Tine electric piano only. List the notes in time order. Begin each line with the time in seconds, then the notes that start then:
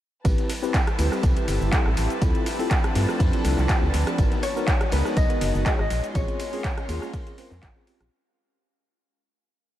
0.24 C4 E4 G4 B4
0.62 C4 E4 G4 B4
0.98 C4 E4 G4 B4
1.36 C4 E4 G4 B4
1.72 C4 E4 G4 A4
2.21 C4 E4 F4 A4
2.59 C4 E4 F4 A4
2.95 C4 E4 F4 A4
3.33 C4 E4 F4 A4
3.69 C4 E4 F4 G4
4.18 B3 D#4 F#4 A#4
4.56 B3 D#4 F#4 A#4
4.92 B3 D#4 F#4 A#4
5.30 B3 D#4 F#4 A#4
5.65 B3 D#4 F#4 G#4
6.15 C4 C#4 F4 G#4
6.53 C4 C#4 F4 G#4
6.88 A#3 C#4 F4 G#4
7.26 C4 C#4 F4 G#4
7.38 C4 C#4 F4 C5
7.75 C4 C#4 F4 G#4
7.87 C4 C#4 F4 G4